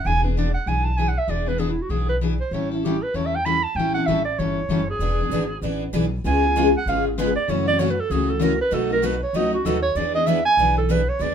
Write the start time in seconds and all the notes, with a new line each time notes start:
0.05 E1 E3 B3 D4 G#4 G#5
0.23 B3 D4 G#4 B4
0.37 E3 B3 D4 G#4 D5
0.54 F#5
0.66 B1 E3 B3 D4 G#4 G#5
0.84 A5
0.97 E3 B3 D4 G#4 G#5
1.08 F#5
1.18 E5
1.28 E1 E3 B3 D4 G#4 D5
1.46 B3 D4 G#4 B4
1.58 E3 B3 D4 G#4
1.70 E4
1.81 F#4
1.89 B1 E3 B3 D4 G#4
2.09 B4
2.21 E3 B3 D4 G#4
2.41 C5
2.51 A1 E3 G3 C#4 E4 A4 C#5
2.71 C#4 E4 A4
2.83 E3 G3 C#4 E4 G4 A4
3.03 B4
3.14 E2 E3 G3 C#4 E4 A4 C#5
3.26 E5
3.36 G5
3.45 E3 G3 C#4 E4 A4 B5
3.63 A5
3.75 A1 E3 G5
3.79 G3 C#4 E4 A4
3.94 C#4 E4 A4 F#5
4.06 A1 E3 G3 C#4 E4 A4 E5
4.25 D5
4.39 G1 E3 G3 C#4 E4 A4 C#5
4.69 F#1 E3 G3 C#4 E4 A4
4.90 G#4
4.99 E1 E3 B3 D4 G#4 B4
5.20 B3 D4 G#4
5.30 G#1 E3 B4
5.34 B3 D4 G#4
5.62 A1 E3 B3 D4 G#4 B4
5.93 B1 E3 B3 D4 G#4 B4
6.24 C#2 C#3 G#3 B3 F4 G#4 G#5
6.42 B3 F4 G#4
6.56 C#3 G#3 B3 F4 G#4
6.77 F#5
6.86 G#1 C#3 G#3 B3 F4 F5
6.90 G#4
7.07 G#4
7.18 C#3 G#3 B3 F4 G#4 B4
7.36 D5
7.48 F#2 C#3 E3 F#3 A3 C#4 E4 F#4 A4 C#5
7.66 A3 C#4 F#4 D5
7.79 C#3 E3 F#3 A3 C#4 E4 F#4 A4 C#5
7.90 B4
8.00 A4
8.10 C#2 C#3 E3 F#3 A3 C#4 E4 F#4 G#4 A4
8.30 A4
8.39 C#3 E3 F#3 A3 C#4 E4 F#4 A4 A#4
8.61 B4
8.71 B1 B2 F#3 A3 D#4 F#4 A4 B4
8.89 A3 D#4 F#4 A#4
9.02 B2 F#3 A3 D#4 F#4 B4
9.23 C#5
9.33 C#2 B2 F#3 A3 D#4 F#4 B4 D#5
9.54 F#4
9.65 D#2 B2 F#3 A3 D#4 F#4 A4 B4
9.83 C#5
9.95 E2 E3 B3 D4 G#4 B4 D5
10.15 B3 D4 G#4 D#5
10.26 E3 B3 D4 G#4 B4 E5
10.45 G#5
10.57 B1 E3 B3 D4 B4
10.61 G#4
10.78 A4
10.89 E3 B3 D4 G#4 B4
11.09 C#5
11.20 E2 E3 B3 D4 G#4 B4 D5